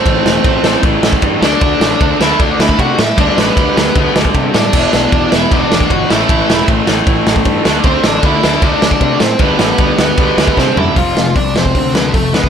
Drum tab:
CC |----------------|----------------|----------------|x---------------|
RD |x---x---x---x---|x---x---x---x---|x---x---x---x---|----x---x---x---|
HH |----------------|----------------|----------------|----------------|
SD |--o---o---o---o-|--o---o---o---o-|--o---o---o---o-|--o---o---o---o-|
FT |----------------|----------------|----------------|----------------|
BD |o---o---o--oo---|o---o---o--oo---|o---o---o--oo---|o---o---o--oo---|

CC |----------------|----------------|----------------|----------------|
RD |x---x---x---x---|x---x---x---x---|x---x---x-------|----------------|
HH |----------------|----------------|----------------|o---o---o---o---|
SD |--o---o---o---o-|--o---o---o---o-|--o---o---o-o---|--o---o---o---o-|
FT |----------------|----------------|--------------o-|----------------|
BD |o---o---o--oo---|o---o---o--oo---|o---o---o--oo---|o---o--oo---o--o|